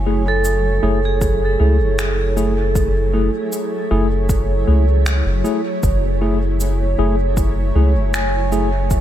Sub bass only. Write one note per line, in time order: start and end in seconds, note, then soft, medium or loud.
0.00 0.79 F#1 medium
0.83 1.56 F#1 medium
1.60 1.81 C#2 medium
1.79 3.30 F#1 medium
3.91 4.64 F#1 medium
4.68 5.22 C#2 medium
5.26 5.43 F#1 loud
5.83 6.95 F#1 medium
6.99 7.72 F#1 medium
7.75 7.96 C#2 medium
7.95 9.01 F#1 medium